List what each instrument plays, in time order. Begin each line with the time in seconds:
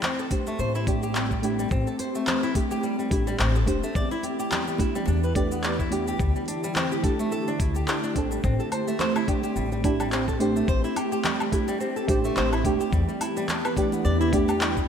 Already playing: ambient pad A3 C4 G4
0.03 nylon-string guitar C4, clap, low conga, cabasa
0.19 nylon-string guitar A4, cabasa
0.30 synth stab A3 D4 G4, nylon-string guitar C5, kick, open hi-hat, high conga
0.47 nylon-string guitar A3, muted conga, high conga, cabasa
0.59 upright bass A1, nylon-string guitar C5, cabasa
0.75 nylon-string guitar E4, cabasa
0.86 synth stab A3 D4 G4, nylon-string guitar G4, kick, open hi-hat
1.03 nylon-string guitar G4, muted conga, cabasa
1.15 nylon-string guitar G3, clap, cabasa
1.31 nylon-string guitar G3, kick, cabasa
1.42 synth stab A3 D4 G4, nylon-string guitar E4, open hi-hat
1.59 nylon-string guitar G3, cabasa
1.71 upright bass A1, nylon-string guitar C4, kick, cabasa
1.87 nylon-string guitar A4, cabasa
1.99 nylon-string guitar C5, open hi-hat, high conga
2.15 nylon-string guitar A3, cabasa
2.27 nylon-string guitar C5, clap, low conga, cabasa
2.43 nylon-string guitar E4, cabasa
2.54 synth stab A3 D4 G4, nylon-string guitar G4, kick, open hi-hat, high conga
2.71 nylon-string guitar G4, muted conga, high conga, cabasa
2.83 nylon-string guitar G3, cabasa
2.99 nylon-string guitar G3, cabasa
3.10 upright bass A1, synth stab A3 D4 G4, nylon-string guitar E4, kick, open hi-hat
3.27 nylon-string guitar G3, muted conga, cabasa
3.39 upright bass A1, nylon-string guitar C4, clap, cabasa
3.55 nylon-string guitar A4, cabasa
3.66 upright bass E1, synth stab A3 D4 G4, nylon-string guitar C5, kick, open hi-hat, muted conga, high conga
3.83 nylon-string guitar A3, muted conga, cabasa
3.95 upright bass E2, ambient pad E3 B3 E4 G4, nylon-string guitar D5, kick, cabasa
4.11 nylon-string guitar E4, cabasa
4.23 nylon-string guitar G4, open hi-hat, high conga
4.40 nylon-string guitar G4, cabasa
4.52 nylon-string guitar G3, clap, low conga, cabasa
4.67 nylon-string guitar G3, cabasa
4.78 synth stab A3 D4 G4, nylon-string guitar E4, kick, open hi-hat, high conga
4.95 nylon-string guitar G3, muted conga, high conga, cabasa
5.07 upright bass E2, nylon-string guitar D4, cabasa
5.24 nylon-string guitar B4, cabasa
5.35 synth stab A3 D4 G4, nylon-string guitar D5, kick, open hi-hat
5.51 nylon-string guitar B3, muted conga, cabasa
5.64 nylon-string guitar D5, clap, cabasa
5.79 nylon-string guitar E4, kick, cabasa
5.91 synth stab A3 D4 G4, nylon-string guitar G4, open hi-hat
6.08 nylon-string guitar G4, cabasa
6.19 upright bass D2, ambient pad D3 A3, nylon-string guitar G3, kick, cabasa
6.36 nylon-string guitar G3, cabasa
6.48 nylon-string guitar D4, open hi-hat, high conga
6.64 nylon-string guitar G3, cabasa
6.76 nylon-string guitar C4, clap, low conga, cabasa
6.92 nylon-string guitar G4, cabasa
7.03 synth stab A3 D4 G4, nylon-string guitar A4, kick, open hi-hat, high conga
7.19 nylon-string guitar A3, muted conga, high conga, cabasa
7.32 nylon-string guitar A4, cabasa
7.48 nylon-string guitar D4, cabasa
7.60 upright bass D2, nylon-string guitar E4, kick, open hi-hat
7.75 nylon-string guitar G4, muted conga, cabasa
7.88 nylon-string guitar D4, clap, cabasa
8.03 nylon-string guitar D4, cabasa
8.14 upright bass A1, synth stab A3 D4 A4, nylon-string guitar C4, kick, open hi-hat, muted conga, high conga
8.31 nylon-string guitar G3, muted conga, cabasa
8.44 upright bass A1, nylon-string guitar C4, ambient pad C4, kick, cabasa
8.60 nylon-string guitar A4, cabasa
8.72 nylon-string guitar C5, open hi-hat, high conga, low woodblock
8.88 nylon-string guitar A3, cabasa
8.99 nylon-string guitar C5, clap, low conga, cabasa
9.16 nylon-string guitar E4, cabasa, low woodblock
9.27 synth stab A3 D4 G4, nylon-string guitar G4, kick, open hi-hat, high conga
9.43 nylon-string guitar G4, muted conga, high conga, cabasa
9.56 upright bass A1, nylon-string guitar G3, cabasa
9.72 nylon-string guitar G3, cabasa
9.83 synth stab A3 D4 G4, nylon-string guitar E4, kick, open hi-hat
10.00 nylon-string guitar G3, muted conga, cabasa, low woodblock
10.12 nylon-string guitar C4, clap, cabasa
10.28 nylon-string guitar A4, kick, cabasa
10.40 synth stab A3 D4 G4, nylon-string guitar C5, open hi-hat
10.56 nylon-string guitar A3, cabasa
10.68 upright bass A1, nylon-string guitar C5, kick, cabasa
10.84 nylon-string guitar E4, cabasa
10.96 nylon-string guitar G4, open hi-hat, high conga, low woodblock
11.12 nylon-string guitar G4, cabasa
11.24 nylon-string guitar G3, clap, low conga, cabasa
11.40 nylon-string guitar G3, cabasa, low woodblock
11.51 synth stab A3 D4 G4, nylon-string guitar E4, kick, open hi-hat, high conga
11.68 nylon-string guitar G3, muted conga, high conga, cabasa
11.80 nylon-string guitar C4, cabasa
11.96 nylon-string guitar A4, cabasa
12.07 upright bass A1, synth stab A3 D4 G4, nylon-string guitar C5, kick, open hi-hat
12.24 nylon-string guitar A3, muted conga, cabasa
12.37 upright bass A1, nylon-string guitar C5, clap, cabasa
12.53 nylon-string guitar E4, cabasa, low woodblock
12.64 upright bass E1, synth stab A3 D4 G4, nylon-string guitar G4, kick, open hi-hat, muted conga, high conga
12.80 nylon-string guitar G4, muted conga, cabasa
12.92 upright bass E2, ambient pad E3 B3 E4, nylon-string guitar G3, kick, cabasa
13.08 nylon-string guitar G3, cabasa
13.20 nylon-string guitar E4, open hi-hat, high conga, low woodblock
13.37 nylon-string guitar G3, cabasa
13.48 nylon-string guitar D4, clap, low conga, cabasa
13.65 nylon-string guitar B4, cabasa, low woodblock
13.76 synth stab A3 D4 G4, nylon-string guitar D5, kick, open hi-hat, high conga
13.92 nylon-string guitar B3, muted conga, high conga, cabasa
14.05 upright bass E2, nylon-string guitar D5, cabasa
14.21 nylon-string guitar E4, cabasa
14.32 synth stab A3 D4 G4, nylon-string guitar G4, kick, open hi-hat
14.48 nylon-string guitar G4, muted conga, cabasa, low woodblock
14.61 nylon-string guitar G3, clap, cabasa
14.77 nylon-string guitar G3, kick, cabasa